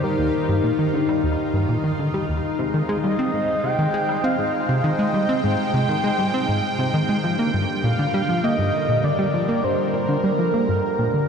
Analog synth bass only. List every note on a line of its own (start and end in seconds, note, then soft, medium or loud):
0.04 0.16 G3 medium
0.19 0.31 D#2 medium
0.49 0.61 G2 loud
0.64 0.72 A#2 loud
0.79 0.87 D#3 medium
0.94 1.06 D3 medium
1.09 1.21 G3 loud
1.24 1.36 D#2 medium
1.54 1.66 G2 medium
1.69 1.77 A#2 medium
1.84 1.92 D#3 loud
1.99 2.11 D3 medium
2.14 2.26 G3 loud
2.29 2.41 D#2 medium
2.59 2.71 C3 medium
2.74 2.82 D#3 medium
2.89 2.97 G#3 loud
3.04 3.16 G3 medium
3.19 3.31 C4 medium
3.34 3.46 G#2 medium
3.64 3.76 C3 loud
3.79 3.87 D#3 loud
3.94 4.02 G#3 loud
4.09 4.21 G3 medium
4.24 4.36 C4 loud
4.39 4.51 G#2 medium
4.69 4.81 C3 medium
4.84 4.92 D#3 loud
4.99 5.07 G#3 loud
5.14 5.26 G3 medium
5.29 5.41 C4 loud
5.44 5.56 G#2 medium
5.74 5.86 C3 medium
5.89 5.97 D#3 loud
6.04 6.12 G#3 loud
6.19 6.31 G3 medium
6.34 6.46 C4 medium
6.49 6.61 G#2 medium
6.79 6.91 C3 loud
6.94 7.02 D#3 loud
7.09 7.17 G#3 loud
7.24 7.36 F3 medium
7.39 7.51 A#3 medium
7.54 7.66 G2 medium
7.84 7.96 A#2 loud
7.99 8.07 D3 loud
8.14 8.22 G3 loud
8.29 8.41 F3 medium
8.44 8.56 A#3 loud
8.59 8.71 G2 medium
8.89 9.01 A#2 loud
9.04 9.12 D3 loud
9.19 9.27 G3 loud
9.34 9.46 F3 medium
9.49 9.61 A#3 medium
9.64 9.76 G2 medium
9.94 10.06 A#2 loud
10.09 10.17 D3 loud
10.24 10.32 G3 loud
10.39 10.51 F3 medium
10.54 10.66 A#3 loud
10.69 10.81 G2 medium
10.99 11.11 A#2 loud
11.14 11.26 D3 medium